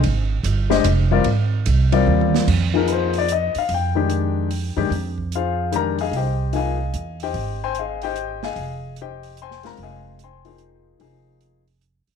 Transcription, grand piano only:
0.70 0.83 G#3 medium
0.70 0.83 D4 medium
0.70 0.84 G4 medium
0.70 0.84 C5 medium
0.70 0.84 D#5 medium
1.11 1.24 G3 medium
1.11 1.24 C4 medium
1.11 1.25 F4 medium
1.11 1.25 A#4 medium
1.11 1.25 D5 medium
1.92 2.44 G3 medium
1.92 2.45 C4 medium
1.92 2.45 F4 medium
1.92 2.45 A#4 medium
1.92 2.45 D5 medium
2.74 3.26 F3 medium
2.74 3.26 A#3 soft
2.74 3.26 D#4 medium
2.74 3.26 G#4 medium
2.74 2.89 A#4 medium
2.88 2.90 B4 soft
2.92 3.16 C5 medium
3.18 3.30 D5 medium
3.32 3.56 D#5 medium
3.58 3.71 F5 medium
3.74 4.89 G5 medium
3.95 4.47 D#3 medium
3.95 4.48 G#3 medium
3.95 4.48 D4 medium
3.95 4.48 G4 medium
4.76 4.89 D#3 medium
4.76 4.90 G#3 medium
4.76 4.90 D4 medium
4.76 4.90 G4 medium
5.35 5.72 F4 medium
5.35 5.71 G#4 medium
5.35 5.72 C5 medium
5.35 5.71 F5 medium
5.72 5.96 D#3 medium
5.72 5.96 G#3 medium
5.72 5.96 D4 medium
5.72 5.97 G4 medium
5.72 6.00 A#5 medium
5.76 6.00 A#4 medium
6.01 6.14 G#4 medium
6.01 6.14 D#5 medium
6.01 6.14 F5 medium
6.01 6.13 G#5 medium
6.16 6.53 G4 medium
6.16 6.53 C5 medium
6.16 6.53 D#5 medium
6.16 6.52 G5 medium
6.53 6.77 F3 medium
6.53 6.77 A#3 soft
6.53 6.77 D#4 soft
6.53 6.77 G#4 medium
6.53 7.18 D#5 medium
6.53 7.18 F5 medium
6.53 7.18 G#5 medium
7.23 7.60 G4 medium
7.23 7.60 C5 medium
7.23 7.60 D#5 medium
7.23 7.59 G5 medium
7.64 7.76 C5 medium
7.64 7.76 G5 medium
7.64 7.76 G#5 medium
7.64 7.76 C6 loud
7.79 8.03 G#4 medium
7.79 8.02 D#5 medium
7.79 8.03 F5 medium
8.03 8.41 G4 medium
8.03 8.41 C5 medium
8.03 8.40 D#5 medium
8.03 8.40 G5 medium
8.44 8.95 G#4 medium
8.44 8.95 D#5 medium
8.44 8.94 F5 medium
8.44 8.94 G#5 medium
9.01 9.37 G4 medium
9.01 9.37 C5 medium
9.01 9.37 D#5 medium
9.01 9.37 G5 medium
9.42 9.66 C5 medium
9.42 9.65 G5 medium
9.42 9.66 G#5 medium
9.42 9.65 C6 medium
9.63 10.16 G#3 medium
9.63 10.16 C4 medium
9.63 10.16 F4 medium
9.63 10.17 A#4 medium
9.63 9.79 A#5 medium
9.83 10.19 G#4 medium
9.83 10.19 D#5 medium
9.83 10.19 F5 medium
9.83 10.19 G#5 medium
10.23 10.84 C5 medium
10.23 10.84 G5 medium
10.23 10.84 G#5 medium
10.23 10.84 C6 medium
10.45 10.97 F3 medium
10.45 10.97 A#3 medium
10.45 10.97 D#4 medium
10.45 10.98 G#4 medium
10.99 11.62 F3 medium
10.99 11.62 A#3 soft
10.99 11.62 D#4 medium
10.99 11.62 G#4 medium

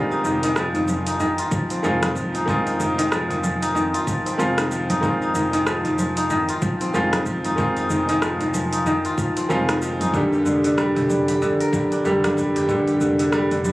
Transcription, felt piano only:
0.00 1.80 D#3 medium
0.00 1.80 G#3 medium
0.00 1.81 C4 medium
0.00 1.82 F4 loud
1.83 2.44 D#3 loud
1.83 2.45 G#3 medium
1.83 2.45 C4 medium
1.83 2.45 F4 loud
2.46 4.35 D#3 loud
2.46 4.36 G#3 medium
2.46 4.36 C4 medium
2.50 4.37 F4 loud
4.38 4.99 D#3 loud
4.38 5.00 G#3 medium
4.38 5.00 C4 medium
4.38 5.00 F4 loud
5.01 6.90 D#3 loud
5.01 6.91 G#3 medium
5.01 6.92 C4 medium
5.05 6.92 F4 loud
6.94 7.54 D#3 loud
6.94 7.55 G#3 medium
6.94 7.55 C4 medium
6.94 7.56 F4 loud
7.56 9.46 D#3 medium
7.56 9.46 G#3 medium
7.56 9.47 C4 medium
7.56 9.47 F4 loud
9.49 10.10 D#3 loud
9.49 10.11 G#3 medium
9.49 10.11 C4 medium
9.49 10.11 F4 loud
10.12 12.01 D3 medium
10.12 12.02 G3 medium
10.12 12.03 A#3 medium
10.16 12.03 G4 loud
12.04 12.66 D3 loud
12.04 12.66 G3 medium
12.04 12.66 A#3 medium
12.04 12.66 G4 loud
12.67 13.72 D3 medium
12.67 13.72 G3 medium
12.67 13.72 A#3 medium
12.67 13.72 G4 loud

